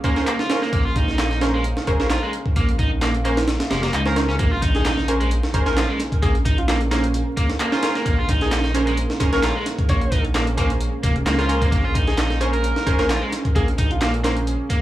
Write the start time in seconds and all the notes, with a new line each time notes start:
Already playing: A#3 C#4 G#4 F5
0.04 A#3 C#4 G#4 A#4 C5, kick, closed hi-hat
0.16 C#4 G#4 A#4 C5, snare
0.27 A#3, clap, closed hi-hat
0.39 F4, snare
0.50 C#4 G#4 A#4 C5, snare, closed hi-hat
0.62 A#3, snare
0.73 A#1 A#3, kick, closed hi-hat
0.85 F4
0.96 D#4, kick, closed hi-hat
1.08 snare
1.18 snare, clap, closed hi-hat
1.31 snare
1.41 C#4 G#4 A#4 C5, snare, closed hi-hat
1.54 G#3
1.64 closed hi-hat
1.77 snare
1.87 F1 C#4 G#4 A#4 C5, kick, closed hi-hat
2.00 A#1 C#4 G#4 A#4 C5, snare
2.10 F4, snare, clap, closed hi-hat
2.23 G#3
2.33 closed hi-hat
2.46 kick
2.56 A#1 A#3, kick, closed hi-hat
2.69 closed hi-hat
2.79 D#4, kick, closed hi-hat
3.02 A#3, snare, clap, closed hi-hat
3.15 closed hi-hat
3.25 A#3 C#4 G#4 A#4 C5, closed hi-hat
3.37 snare, closed hi-hat
3.48 snare, closed hi-hat
3.60 snare, closed hi-hat
3.70 F1 G#3, snare, closed hi-hat
3.83 A#3, snare, closed hi-hat
3.93 C#2 D#4, clap, closed hi-hat
4.06 C#4 G#4 A#4 C5, snare
4.16 C#4 G#4 A#4 C5, snare, closed hi-hat
4.29 C#4, snare
4.39 A#1 A#3 C#4 G#4 A#4, kick, closed hi-hat, impact
4.51 F4
4.62 D#4, kick, closed hi-hat
4.75 G#4, snare, closed hi-hat
4.85 snare, clap, closed hi-hat
4.98 snare
5.08 C#4 G#4 A#4 C5, closed hi-hat
5.20 G#3, closed hi-hat
5.31 closed hi-hat
5.43 snare
5.54 F1 C#4 G#4 A#4 C5, kick, closed hi-hat
5.66 A#1 C#4 G#4 A#4 C5, snare, closed hi-hat
5.77 F4, snare, clap, closed hi-hat
5.89 G#3
6.00 snare, closed hi-hat
6.12 kick, closed hi-hat
6.22 A#1 A#3 G#4, kick, closed hi-hat
6.35 closed hi-hat
6.45 D#4, kick, closed hi-hat
6.58 F4, closed hi-hat
6.68 A#3 F4, snare, clap, closed hi-hat
6.81 closed hi-hat
6.91 A#3 C#4 G#4 A#4 C5, snare, closed hi-hat
7.04 closed hi-hat
7.14 closed hi-hat
7.37 A#3, kick, closed hi-hat
7.50 snare, closed hi-hat
7.60 A#3, clap, closed hi-hat
7.72 C#4 F4 G#4 A#4 C5, snare
7.82 C#4 G#4 A#4 C5, snare, closed hi-hat
7.95 A#3, snare, closed hi-hat
8.06 A#1 A#3, kick, closed hi-hat
8.19 F4
8.29 D#4, kick, closed hi-hat
8.41 G#4, snare, closed hi-hat
8.52 snare, clap, closed hi-hat
8.64 snare
8.74 C#4 G#4 A#4 C5, closed hi-hat
8.87 G#3, closed hi-hat
8.97 closed hi-hat
9.10 snare
9.20 F1 C#4 G#4 A#4 C5, kick, closed hi-hat
9.32 A#1 C#4 G#4 A#4 C#5, snare, closed hi-hat
9.43 F4, snare, clap, closed hi-hat
9.56 G#3
9.66 snare, closed hi-hat
9.78 kick, closed hi-hat
9.89 A#1 A#3 C#5, kick, closed hi-hat
10.01 closed hi-hat
10.12 D#4, kick, closed hi-hat
10.25 closed hi-hat
10.35 A#3, snare, clap, closed hi-hat
10.47 closed hi-hat
10.57 A#3 C#4 G#4 A#4 C5, kick, closed hi-hat
10.70 closed hi-hat
10.81 closed hi-hat
11.03 F1 A#3, kick, closed hi-hat
11.16 closed hi-hat
11.26 C#2 A#3, snare, clap, closed hi-hat
11.38 C#4 F4 G#4 A#4 C5, snare, closed hi-hat
11.49 C#4 G#4 A#4 C5, closed hi-hat
11.61 A#3, kick, closed hi-hat
11.72 A#1 A#3, kick, closed hi-hat
11.84 F4
11.94 D#4, kick, closed hi-hat
12.07 G#4, snare, closed hi-hat
12.18 snare, clap, closed hi-hat
12.30 snare
12.40 C#4 G#4 A#4 C5, closed hi-hat
12.53 A#4, closed hi-hat
12.64 closed hi-hat
12.76 snare
12.86 F1 C#4 G#4 A#4 C5, kick, closed hi-hat
12.99 A#1 C#4 G#4 A#4 C5, snare, closed hi-hat
13.10 F4, snare, clap, closed hi-hat
13.22 G#3
13.32 snare, closed hi-hat
13.45 kick, closed hi-hat
13.55 A#1 A#3 G#4, kick, closed hi-hat
13.68 closed hi-hat
13.78 D#4, kick, closed hi-hat
13.91 F4, closed hi-hat
14.01 A#3 F4, snare, clap, closed hi-hat
14.14 closed hi-hat
14.24 A#3 C#4 G#4 A#4 C5, snare, closed hi-hat
14.37 closed hi-hat
14.47 closed hi-hat
14.70 A#3, kick, closed hi-hat